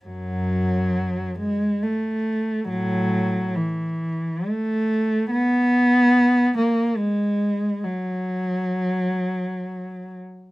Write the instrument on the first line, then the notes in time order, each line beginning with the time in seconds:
cello
0.05 F#2 F#3
1.39 G#3
1.82 A3
2.69 A2 F#3
3.56 E3
4.48 A3
5.31 B3
6.58 A#3
6.97 G#3
7.83 F#3